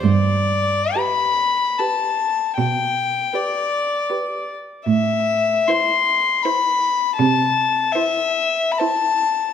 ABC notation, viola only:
X:1
M:3/4
L:1/8
Q:1/4=77
K:G
V:1 name="Viola"
z2 G2 G2 | z2 G2 G2 | z2 E2 E2 | z2 E2 E2 |]